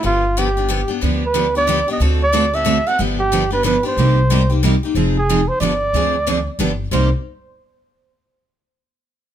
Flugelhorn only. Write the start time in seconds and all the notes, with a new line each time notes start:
0.06 F4
0.39 G4
1.26 B4
1.57 D5
1.92 D#5
2.23 D5
2.55 E5
2.88 F#5
3.20 G4
3.53 B4
3.65 B4
3.87 C5
5.18 G#4
5.48 C5
5.61 D5
6.93 C5